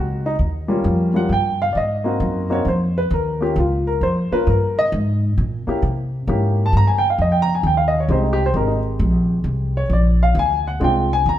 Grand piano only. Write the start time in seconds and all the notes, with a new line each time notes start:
Already playing: F#3 A#3 C4 D#4 F#4
0.26 D#4
0.68 G3 A#3 C#4 F4
1.14 G3 A#3 C#4 F4 F#5
1.33 G5
1.62 F5
1.73 D5
1.77 D#5
2.04 A#3 C4 D#4 F#4
2.50 A#3 C4 D#4 F#4 C#5
2.68 C5
2.98 B4
3.14 A#4
3.41 A#3 C#4 F4 G4
3.59 F4
3.87 A#4
4.03 C5
4.32 A#3 C#4 F4 A#4 B4
4.49 A#4
4.79 D#5
5.67 A#3 C#4 E4 G4
6.28 A#3 C#4 E4 G4
6.66 A5
6.77 A#5
6.87 G#5
6.98 G5
7.10 F5
7.22 D#5
7.32 G5
7.42 A#5
7.55 G#5
7.67 G5
7.77 F5
7.88 D#5
8.00 C#5
8.09 G#3 C4 D#4 G4 C5
8.23 D#4
8.33 G4
8.46 C5
8.55 G#3 C4 D#4 G4 A#4
8.67 D#4
9.77 C#5
9.93 D5
10.23 F5
10.39 G#5
10.67 F#5
10.80 G#3 C4 D4 F4
10.84 G5
11.13 G#5
11.29 A#5